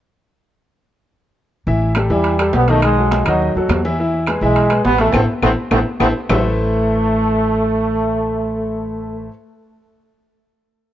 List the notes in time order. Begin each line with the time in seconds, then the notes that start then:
1.66 A1 E3 E4 E5, high conga
1.81 high conga
1.95 G3 G4 A4, high conga, high timbale, low timbale, claves
2.10 E2 E3 G3 E4 E5, high conga
2.24 high conga, high timbale
2.39 G3 G4 A4, high conga, high timbale, claves
2.53 B1 B3, high conga, low timbale
2.68 D#3 A3 D#4 D#5, high conga, high timbale
2.82 G#3, high conga, high timbale, claves
2.97 F#3 F#4 A4, high conga
3.11 high conga, high timbale, low timbale
3.25 D#2 D#3 F#3 D#4 D#5, high conga, high timbale, claves
3.42 high conga
3.55 D#2 F#3 F#4 A4, high conga
3.68 E2, high conga, high timbale, low timbale, claves
3.84 E3 E4 E5, high conga
3.99 E3 E4 E5, high conga
4.14 high conga
4.26 G#3 G#4 B4, high conga, high timbale, low timbale, claves
4.41 B1 E3 G#3 E4 E5, high conga
4.56 high conga, high timbale
4.70 G#3 G#4 B4, high conga, high timbale, claves
4.84 A1 B3, high conga, low timbale
4.98 E3 A3 E4 E5, high conga, high timbale
5.12 A1 A3 B3 C4 E4 A4, high conga, high timbale, claves
5.42 A1 A3 B3 C4 E4 A4, high conga, high timbale, claves
5.71 A1 A3 B3 C4 E4 A4, high conga, high timbale, claves
6.00 A1 A3 B3 C4 E4 A4, high conga, high timbale, claves
6.29 A1 A3 E4 A4 B4 C5 E5, low conga, low timbale, claves